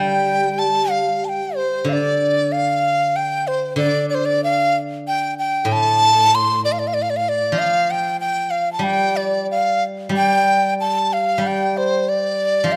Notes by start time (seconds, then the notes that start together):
Already playing: D3 G3 G5
0.59 A5
0.91 F5
1.25 G5 A5
1.56 C5
1.84 D3
1.89 F5
1.93 D5
2.52 F5
3.16 G5
3.47 C5
3.76 D3 D5
4.09 D5
4.15 C5
4.25 D5
4.44 F5
5.07 G5
5.39 G5
5.65 A2
5.72 A5
6.35 C6
6.65 D5
6.72 F5
6.79 D5
6.87 F5
6.94 D5
7.02 F5
7.10 D5
7.16 F5
7.29 D5
7.52 F3
7.59 F5
7.91 G5
8.20 G5
8.51 F5
8.73 A5
8.79 G3
8.84 G5
9.17 D5
9.51 F5
10.09 G3
10.16 G5
10.80 A5
11.13 F5
11.38 G3
11.47 G5
11.77 C5
12.09 D5
12.64 F3
12.72 F5